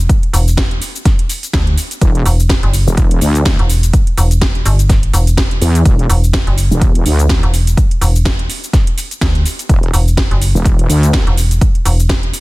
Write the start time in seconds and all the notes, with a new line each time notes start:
0.09 kick, closed hi-hat, shaker
0.23 closed hi-hat
0.33 E1, open hi-hat, shaker
0.48 shaker
0.57 kick, snare, closed hi-hat
0.71 closed hi-hat
0.82 open hi-hat, shaker
0.96 shaker
1.05 kick, snare, closed hi-hat, shaker
1.19 closed hi-hat
1.29 open hi-hat, shaker
1.43 closed hi-hat, shaker
1.53 D2, kick, snare, closed hi-hat, shaker
1.67 closed hi-hat
1.77 open hi-hat, shaker
1.91 closed hi-hat, shaker
2.01 E1, kick, closed hi-hat, shaker
2.15 closed hi-hat
2.26 E1, open hi-hat, shaker
2.40 shaker
2.49 kick, snare, closed hi-hat, shaker
2.63 F#1, closed hi-hat
2.73 open hi-hat, shaker
2.87 E1, shaker
2.97 kick, closed hi-hat, shaker
3.11 closed hi-hat
3.21 D2, open hi-hat, shaker
3.35 closed hi-hat, shaker
3.45 kick, snare, closed hi-hat, shaker
3.59 E1, closed hi-hat
3.69 open hi-hat, shaker
3.83 closed hi-hat, shaker
3.93 kick, closed hi-hat, shaker
4.07 closed hi-hat
4.17 E1, open hi-hat, shaker
4.31 closed hi-hat, shaker
4.42 kick, snare, closed hi-hat, shaker
4.55 closed hi-hat
4.65 G1, open hi-hat, shaker
4.79 closed hi-hat, shaker
4.89 kick, snare, closed hi-hat, shaker
5.03 closed hi-hat
5.13 E1, open hi-hat, shaker
5.27 closed hi-hat, shaker
5.37 kick, snare, closed hi-hat, shaker
5.51 closed hi-hat
5.61 E2, open hi-hat, shaker
5.75 closed hi-hat, shaker
5.85 E1, kick, closed hi-hat, shaker
5.99 closed hi-hat
6.10 E1, open hi-hat, shaker
6.24 shaker
6.33 kick, snare, closed hi-hat, shaker
6.47 F#1, closed hi-hat
6.58 open hi-hat, shaker
6.71 E1, shaker
6.81 kick, closed hi-hat, shaker
6.95 closed hi-hat
7.05 D2, open hi-hat, shaker
7.19 closed hi-hat, shaker
7.29 kick, snare, closed hi-hat, shaker
7.43 E1, closed hi-hat
7.54 open hi-hat, shaker
7.67 closed hi-hat, shaker
7.77 kick, closed hi-hat, shaker
7.91 closed hi-hat
8.01 E1, open hi-hat, shaker
8.16 shaker
8.25 kick, snare, closed hi-hat, shaker
8.39 closed hi-hat
8.50 open hi-hat, shaker
8.64 shaker
8.73 kick, snare, closed hi-hat, shaker
8.87 closed hi-hat
8.98 open hi-hat, shaker
9.11 closed hi-hat, shaker
9.21 D2, kick, snare, closed hi-hat, shaker
9.35 closed hi-hat
9.46 open hi-hat, shaker
9.59 closed hi-hat, shaker
9.69 E1, kick, closed hi-hat, shaker
9.83 closed hi-hat
9.93 E1, open hi-hat, shaker
10.08 shaker
10.17 kick, snare, closed hi-hat, shaker
10.31 F#1, closed hi-hat
10.42 open hi-hat, shaker
10.55 E1, shaker
10.65 kick, closed hi-hat, shaker
10.79 closed hi-hat
10.89 D2, open hi-hat, shaker
11.03 closed hi-hat, shaker
11.13 kick, snare, closed hi-hat, shaker
11.27 E1, closed hi-hat
11.37 open hi-hat, shaker
11.51 closed hi-hat, shaker
11.61 kick, closed hi-hat, shaker
11.75 closed hi-hat
11.85 E1, open hi-hat, shaker
12.00 shaker
12.09 kick, snare, closed hi-hat, shaker
12.23 closed hi-hat
12.33 open hi-hat, shaker